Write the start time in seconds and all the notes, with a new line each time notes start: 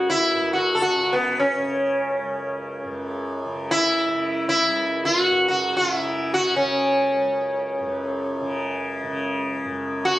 Already playing: C#2 F#2 C#3
0.10 E4
0.34 F#2
0.53 F#4
0.75 A4
0.82 F#4
0.97 C#3
1.13 B3
1.40 C#4
1.59 C#3
2.21 C#2
2.84 F#2
3.45 C#3
3.71 E4
4.08 C#3
4.49 E4
4.68 C#2
5.05 F4
5.21 F#4
5.30 F#2
5.48 F#4
5.77 F4
5.93 C#3 E4
6.34 F#4
6.56 C#3 C#4
7.18 C#2
7.80 F#2
8.41 C#3
9.03 C#3
9.64 F#2
10.05 F#4